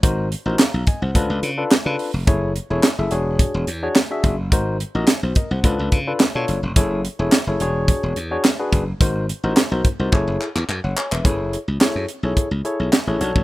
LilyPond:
<<
  \new Staff \with { instrumentName = "Tine electric piano" } { \time 4/4 \key fis \minor \tempo 4 = 107 << { r4 <eis'' ais''>8 <dis'' gis''>16 <bis' fis''>8 r4. r16 | r1 | r4 r16 <fis' bis'>16 <ais' dis''>16 <bis' fis''>8 r4. r16 | r1 |
r2. r16 <cis'' fis''>16 <cis'' gis''>16 <b' e''>16~ | <b' e''>16 r2. r8. | } \\ { <dis' fis' ais' bis'>8 r16 <dis' fis' ais' bis'>16 r4 <d' eis' a' b'>8 r16 <d' eis' a' b'>16 r16 <d' eis' a' b'>8 r16 | <e' gis' a' cis''>8 r16 <e' gis' a' cis''>16 r16 <e' gis' a' e''>16 <d' fis' gis' cis''>4 r16 <d' fis' gis' cis''>16 r16 <d' fis' gis' e''>8 r16 | <dis' fis' ais' bis'>8 r16 <dis' fis' ais' dis''>16 r4 <d' eis' a' b'>8 r16 <d' eis' a' b'>16 r16 <d' eis' a' cis''>8 r16 | <e' gis' a' cis''>8 r16 <e' gis' a' cis''>16 r16 <e' gis' a' cis''>16 <d' fis' gis' cis''>4 r16 <d' fis' gis' cis''>16 r16 <d' fis' gis' b'>8 r16 |
<dis' fis' ais' bis'>8 r16 <dis' fis' ais' bis'>16 r16 <dis' fis' ais' bis'>16 r16 <dis' fis' ais' bis'>16 <e' gis' a' cis''>8 r4. | <e' gis' a' cis''>8 r8 <e' gis' a' cis''>8 r16 <e' gis' a' cis''>8 r16 <e' gis' a' cis''>8 r16 <e' gis' a' cis''>16 <d' fis' a' cis''>8 | } >> }
  \new Staff \with { instrumentName = "Slap bass" } { \clef bass \time 4/4 \key fis \minor gis,,8. a,,16 r16 b,,16 r16 bis,,16 cis,16 cis,16 cis8 r16 cis16 r16 eis,,16 | fis,,8. e,,16 r16 fis,,16 e,,8. e,,16 e,8 r8 fis,,8 | gis,,8. a,,16 r16 b,,16 r16 bis,,16 cis,16 cis,16 cis8 r16 b,16 fis,,16 eis,,16 | fis,,8. e,,16 r16 fis,,16 e,,8. e,,16 e,8 r8 fis,,8 |
gis,,8. a,,16 r16 b,,16 r16 bis,,16 fis,,16 fis,,16 r16 e,16 fis,16 fis,,16 r16 e,,16 | fis,,8. cis,16 r16 fis,16 r16 b,,16 r16 cis,16 r16 b,,16 r16 a,,16 b,,16 a,,16 | }
  \new DrumStaff \with { instrumentName = "Drums" } \drummode { \time 4/4 <hh bd>8 hh8 <hc hh sn>8 <hh bd>8 <hh bd>8 hh8 <hc hh sn>8 hho8 | <hh bd>8 hh8 <hc hh sn>8 hh8 <hh bd>8 hh8 <hc hh sn>8 <hh bd>8 | <hh bd>8 hh8 <hc hh sn>8 <hh bd>8 <hh bd>8 <hh bd>8 <hc hh sn>8 hh8 | <hh bd>8 hh8 <hc hh sn>8 hh8 <hh bd>8 hh8 <hc hh sn>8 <hh bd>8 |
<hh bd>8 hh8 <hc hh sn>8 <hh bd>8 <hc bd>8 hc16 hc16 hc8 hc16 hc16 | <hh bd>8 hh8 <hc hh sn>8 hh8 <hh bd>8 hh8 <hc hh sn>8 hh16 bd16 | }
>>